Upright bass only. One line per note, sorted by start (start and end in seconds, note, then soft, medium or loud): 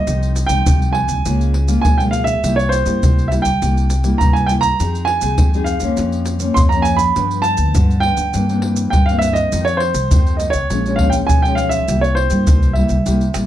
0.07 0.45 C2 medium
0.50 0.63 C2 medium
0.67 1.04 C2 medium
1.09 1.22 C2 medium
1.26 1.76 C#2 medium
1.85 2.35 B1 medium
2.44 2.81 C2 medium
2.86 2.99 G2 medium
3.03 3.40 C2 medium
3.45 3.59 C2 medium
3.62 4.12 C2 medium
4.21 4.71 C2 medium
4.80 5.18 F2 medium
5.22 5.36 C2 medium
5.39 5.77 F2 medium
5.82 5.95 F2 medium
5.99 6.49 F2 medium
6.57 7.07 F2 medium
7.16 7.54 G2 medium
7.58 7.72 D2 medium
7.75 8.13 G2 loud
8.18 8.31 G2 medium
8.35 8.85 G2 medium
8.94 9.44 G2 medium
9.53 9.90 F2 medium
9.94 10.08 C2 medium
10.11 10.49 F2 medium
10.54 10.67 C2 medium
10.70 11.20 A#1 medium
11.29 11.80 B1 medium
11.89 12.26 C2 loud
12.31 12.44 G2 loud
12.48 12.85 C2 loud
12.90 13.03 C2 medium
13.06 13.32 C2 medium
13.35 13.46 A#1 medium